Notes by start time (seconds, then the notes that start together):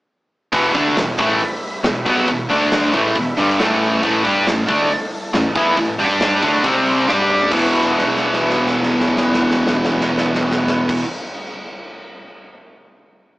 0.53 E1 E2 B2 E3 G4 E5 B5, kick, open hi-hat
0.75 D2 D3 A3 D4, kick, open hi-hat
0.97 E1 E2 B2, snare, open hi-hat
1.19 A1 A2 E3 A3, kick, snare, open hi-hat
1.41 open hi-hat
1.63 open hi-hat
1.83 E1 E2 B2, snare, open hi-hat
2.05 B1 B2 F#3 B3, kick, open hi-hat
2.28 E1 E2 B2, kick, open hi-hat
2.49 D2 D3 A3 D4 A4 D5 D6, open hi-hat
2.72 snare, open hi-hat
2.93 A1 A2 E3 A3 G4 E5 B5, kick, open hi-hat
3.16 E1 E2 B2, kick, open hi-hat
3.37 G1 G2 D3 G3, open hi-hat
3.50 snare
3.59 A1 A2 E3 A3 E4 A4 A5, snare, open hi-hat
3.82 open hi-hat
4.03 A1 A2 E3 A3, kick, open hi-hat
4.24 G2 G3 D4 G4, kick, open hi-hat
4.47 A1 A2 E3, snare, open hi-hat
4.69 D2 D3 A3 D4, kick, open hi-hat
4.90 open hi-hat
5.12 open hi-hat
5.33 A1 A2 E3, snare, open hi-hat
5.55 E2 E3 B3 E4, kick, open hi-hat
5.77 A1 A2 E3, kick, open hi-hat
5.98 G2 G3 D4 G4 D5 D6, open hi-hat
6.21 snare, open hi-hat
6.43 D2 D3 A3 D4 E4 A4 A5, kick, snare, open hi-hat
6.64 C2 C3 G3 C4 G4 C5 C6, kick, open hi-hat
6.87 open hi-hat
7.07 G2 G3 D4 G4 D5 D6, snare
7.19 high tom
7.30 mid tom
7.41 floor tom
7.50 E1 E2 B2 E3 E4 B4 F#5, kick, crash
7.74 floor tom
7.81 snare
7.90 floor tom
7.99 snare
8.07 floor tom
8.16 snare
8.25 floor tom
8.33 snare
8.42 floor tom
8.50 snare
8.58 floor tom
8.67 snare
8.74 floor tom
8.83 snare
8.91 floor tom
9.00 snare
9.08 floor tom
9.17 snare
9.24 floor tom
9.34 snare
9.42 floor tom
9.51 snare
9.59 floor tom
9.67 snare
9.75 floor tom
9.84 snare
9.92 floor tom
10.01 snare
10.09 floor tom
10.18 snare
10.26 floor tom
10.35 snare
10.43 floor tom
10.51 snare
10.59 floor tom
10.67 snare
10.89 kick, crash